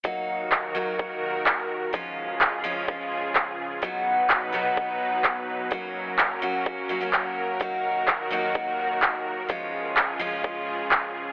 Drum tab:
CP |--x---x-|--x---x-|--x---x-|--x---x-|
BD |o-o-o-o-|o-o-o-o-|o-o-o-o-|o-o-o-o-|

CP |--x---x-|--x---x-|
BD |o-o-o-o-|o-o-o-o-|